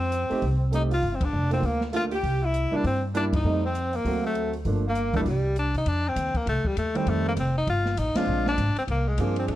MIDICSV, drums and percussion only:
0, 0, Header, 1, 2, 480
1, 0, Start_track
1, 0, Tempo, 301963
1, 1631, Time_signature, 4, 2, 24, 8
1, 15189, End_track
2, 0, Start_track
2, 0, Title_t, "Drums"
2, 190, Note_on_c, 9, 42, 51
2, 349, Note_off_c, 9, 42, 0
2, 487, Note_on_c, 9, 46, 33
2, 646, Note_off_c, 9, 46, 0
2, 668, Note_on_c, 9, 46, 42
2, 670, Note_on_c, 9, 36, 32
2, 827, Note_off_c, 9, 46, 0
2, 829, Note_off_c, 9, 36, 0
2, 1156, Note_on_c, 9, 42, 52
2, 1315, Note_off_c, 9, 42, 0
2, 1450, Note_on_c, 9, 46, 38
2, 1609, Note_off_c, 9, 46, 0
2, 1627, Note_on_c, 9, 36, 30
2, 1631, Note_on_c, 9, 46, 39
2, 1786, Note_off_c, 9, 36, 0
2, 1790, Note_off_c, 9, 46, 0
2, 1918, Note_on_c, 9, 36, 72
2, 1919, Note_on_c, 9, 51, 71
2, 2077, Note_off_c, 9, 36, 0
2, 2078, Note_off_c, 9, 51, 0
2, 2402, Note_on_c, 9, 46, 34
2, 2561, Note_off_c, 9, 46, 0
2, 2588, Note_on_c, 9, 36, 31
2, 2594, Note_on_c, 9, 46, 41
2, 2747, Note_off_c, 9, 36, 0
2, 2753, Note_off_c, 9, 46, 0
2, 2873, Note_on_c, 9, 38, 41
2, 3032, Note_off_c, 9, 38, 0
2, 3068, Note_on_c, 9, 42, 47
2, 3227, Note_off_c, 9, 42, 0
2, 3359, Note_on_c, 9, 46, 38
2, 3518, Note_off_c, 9, 46, 0
2, 3552, Note_on_c, 9, 36, 31
2, 3554, Note_on_c, 9, 46, 43
2, 3711, Note_off_c, 9, 36, 0
2, 3713, Note_off_c, 9, 46, 0
2, 4036, Note_on_c, 9, 42, 51
2, 4195, Note_off_c, 9, 42, 0
2, 4516, Note_on_c, 9, 36, 32
2, 4521, Note_on_c, 9, 46, 42
2, 4675, Note_off_c, 9, 36, 0
2, 4680, Note_off_c, 9, 46, 0
2, 5003, Note_on_c, 9, 42, 49
2, 5162, Note_off_c, 9, 42, 0
2, 5289, Note_on_c, 9, 36, 83
2, 5297, Note_on_c, 9, 51, 70
2, 5448, Note_off_c, 9, 36, 0
2, 5456, Note_off_c, 9, 51, 0
2, 5960, Note_on_c, 9, 42, 48
2, 6119, Note_off_c, 9, 42, 0
2, 6246, Note_on_c, 9, 46, 36
2, 6405, Note_off_c, 9, 46, 0
2, 6436, Note_on_c, 9, 36, 32
2, 6444, Note_on_c, 9, 46, 43
2, 6595, Note_off_c, 9, 36, 0
2, 6603, Note_off_c, 9, 46, 0
2, 6917, Note_on_c, 9, 42, 50
2, 7076, Note_off_c, 9, 42, 0
2, 7207, Note_on_c, 9, 46, 37
2, 7366, Note_off_c, 9, 46, 0
2, 7391, Note_on_c, 9, 46, 40
2, 7392, Note_on_c, 9, 36, 30
2, 7550, Note_off_c, 9, 46, 0
2, 7551, Note_off_c, 9, 36, 0
2, 7873, Note_on_c, 9, 42, 50
2, 8032, Note_off_c, 9, 42, 0
2, 8162, Note_on_c, 9, 36, 47
2, 8163, Note_on_c, 9, 46, 35
2, 8321, Note_off_c, 9, 36, 0
2, 8322, Note_off_c, 9, 46, 0
2, 8353, Note_on_c, 9, 36, 30
2, 8358, Note_on_c, 9, 46, 45
2, 8512, Note_off_c, 9, 36, 0
2, 8517, Note_off_c, 9, 46, 0
2, 8837, Note_on_c, 9, 42, 50
2, 8996, Note_off_c, 9, 42, 0
2, 9131, Note_on_c, 9, 46, 37
2, 9290, Note_off_c, 9, 46, 0
2, 9313, Note_on_c, 9, 51, 54
2, 9314, Note_on_c, 9, 36, 22
2, 9472, Note_off_c, 9, 51, 0
2, 9473, Note_off_c, 9, 36, 0
2, 9793, Note_on_c, 9, 36, 21
2, 9796, Note_on_c, 9, 44, 59
2, 9796, Note_on_c, 9, 51, 55
2, 9952, Note_off_c, 9, 36, 0
2, 9955, Note_off_c, 9, 44, 0
2, 9955, Note_off_c, 9, 51, 0
2, 10084, Note_on_c, 9, 36, 51
2, 10087, Note_on_c, 9, 51, 39
2, 10243, Note_off_c, 9, 36, 0
2, 10246, Note_off_c, 9, 51, 0
2, 10274, Note_on_c, 9, 36, 23
2, 10284, Note_on_c, 9, 51, 50
2, 10433, Note_off_c, 9, 36, 0
2, 10443, Note_off_c, 9, 51, 0
2, 10565, Note_on_c, 9, 36, 54
2, 10724, Note_off_c, 9, 36, 0
2, 10753, Note_on_c, 9, 36, 17
2, 10756, Note_on_c, 9, 44, 51
2, 10756, Note_on_c, 9, 51, 56
2, 10912, Note_off_c, 9, 36, 0
2, 10915, Note_off_c, 9, 44, 0
2, 10915, Note_off_c, 9, 51, 0
2, 11050, Note_on_c, 9, 51, 43
2, 11209, Note_off_c, 9, 51, 0
2, 11230, Note_on_c, 9, 36, 23
2, 11233, Note_on_c, 9, 51, 50
2, 11389, Note_off_c, 9, 36, 0
2, 11392, Note_off_c, 9, 51, 0
2, 11708, Note_on_c, 9, 44, 47
2, 11708, Note_on_c, 9, 51, 66
2, 11710, Note_on_c, 9, 36, 24
2, 11867, Note_off_c, 9, 44, 0
2, 11867, Note_off_c, 9, 51, 0
2, 11869, Note_off_c, 9, 36, 0
2, 12192, Note_on_c, 9, 36, 24
2, 12196, Note_on_c, 9, 51, 53
2, 12351, Note_off_c, 9, 36, 0
2, 12355, Note_off_c, 9, 51, 0
2, 12484, Note_on_c, 9, 38, 45
2, 12643, Note_off_c, 9, 38, 0
2, 12671, Note_on_c, 9, 36, 20
2, 12673, Note_on_c, 9, 44, 46
2, 12673, Note_on_c, 9, 51, 60
2, 12830, Note_off_c, 9, 36, 0
2, 12832, Note_off_c, 9, 44, 0
2, 12832, Note_off_c, 9, 51, 0
2, 12962, Note_on_c, 9, 38, 76
2, 12962, Note_on_c, 9, 51, 65
2, 13121, Note_off_c, 9, 38, 0
2, 13121, Note_off_c, 9, 51, 0
2, 13450, Note_on_c, 9, 38, 53
2, 13609, Note_off_c, 9, 38, 0
2, 13634, Note_on_c, 9, 36, 22
2, 13636, Note_on_c, 9, 44, 47
2, 13636, Note_on_c, 9, 51, 60
2, 13793, Note_off_c, 9, 36, 0
2, 13795, Note_off_c, 9, 44, 0
2, 13795, Note_off_c, 9, 51, 0
2, 13931, Note_on_c, 9, 51, 39
2, 14090, Note_off_c, 9, 51, 0
2, 14112, Note_on_c, 9, 36, 18
2, 14113, Note_on_c, 9, 51, 52
2, 14271, Note_off_c, 9, 36, 0
2, 14272, Note_off_c, 9, 51, 0
2, 14587, Note_on_c, 9, 44, 56
2, 14587, Note_on_c, 9, 51, 58
2, 14591, Note_on_c, 9, 36, 20
2, 14746, Note_off_c, 9, 44, 0
2, 14746, Note_off_c, 9, 51, 0
2, 14750, Note_off_c, 9, 36, 0
2, 14881, Note_on_c, 9, 51, 42
2, 15040, Note_off_c, 9, 51, 0
2, 15073, Note_on_c, 9, 51, 49
2, 15074, Note_on_c, 9, 36, 20
2, 15189, Note_off_c, 9, 36, 0
2, 15189, Note_off_c, 9, 51, 0
2, 15189, End_track
0, 0, End_of_file